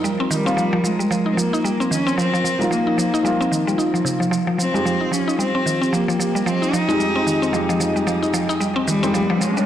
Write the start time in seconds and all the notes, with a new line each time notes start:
Already playing: F3 C#4 A#4 D#5
0.04 G3, shaker
0.20 C4
0.31 D#3 G3, shaker
0.45 F3 A#3 C4 D#4 F4, shaker
0.53 F3 F4
0.58 shaker
0.73 F3
0.84 F3 G#3, shaker
0.99 G3, shaker
1.11 F3, shaker
1.26 D#4
1.33 C4
1.37 F3 A#3, shaker
1.53 D#4, shaker
1.64 G3, shaker
1.80 C4, shaker
1.91 D#3 C#4, shaker
2.07 C4, shaker
2.18 F3 C4, shaker
2.33 F3, shaker
2.44 F3, shaker
2.59 F3 G3 A#3 D#4 F4, shaker
2.71 F3 A#3, shaker
2.87 D#4
2.98 F3, shaker
3.14 D#4, shaker
3.23 F3 G3 A#3 D#4 F4, shaker
3.41 C4, shaker
3.52 D#3, shaker
3.67 G3, shaker
3.78 D#4, shaker
3.94 F3, shaker
4.05 C3, shaker
4.20 F3, shaker
4.31 F3, shaker
4.47 F3
4.54 G4
4.58 F3 C4, shaker
4.74 F2 G3 G#3 D#4 G4, shaker
4.85 F3, shaker
5.01 D#4
5.12 F3 C#4, shaker
5.28 D#4, shaker
5.39 G3 C4, shaker
5.55 C4
5.66 D#3, shaker
5.81 C4, shaker
5.93 F3 A#3, shaker
6.08 F3, shaker
6.19 F3 D#5, shaker
6.35 G3, shaker
6.46 F3 C4, shaker
6.62 D#4, shaker
6.73 F3 D#4, shaker
6.88 F2 G#3 D#4 G4, shaker
7.00 G3, shaker
7.16 C4
7.27 D#3, shaker
7.42 C4, shaker
7.51 F2 F3 G#3 D#4, shaker
7.55 G4
7.69 F3, shaker
7.80 F3, shaker
7.96 G3, shaker
8.07 F3, shaker
8.23 D#4, shaker
8.34 F3, shaker
8.49 D#4, shaker
8.60 G3, riser, shaker
8.76 C4
8.87 D#3 G3, shaker
9.03 F2 G#3 C4 D#4 G4, shaker
9.14 F3, shaker
9.30 F3 F5
9.41 F3 G#3, shaker
9.57 G3, shaker